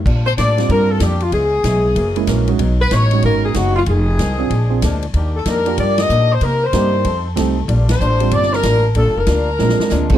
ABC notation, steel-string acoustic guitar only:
X:1
M:4/4
L:1/8
Q:"Swing" 1/4=189
K:Bb
V:1 name="Steel-string acoustic guitar"
[B,,G,DF] z [B,,G,DF] z [B,,G,DF] z [B,,G,DF] z | [_D,_A,_C_F] z [D,A,CF] z [_G,,_F,B,_D] z [G,,F,B,D] z | [=B,,^F,^G,^D] z [B,,F,G,D] z [B,,F,G,D] z [B,,F,G,D] z | [F,,E,_A,C] z [F,,E,A,C] z [B,,F,A,D] z [B,,F,A,D] z |
[E,B,DG] z [E,B,DG] z [E,B,DG] z [E,B,DG] z | [C,B,EG] z [C,B,EG] z [F,CEA] z [F,CEA] z | [B,,G,DF] z [B,,G,DF] z [B,,G,DF] z [B,,G,DF] z | [B,,G,DF] z [B,,G,DF] z [B,,_A,DF] z [B,,A,DF] z |]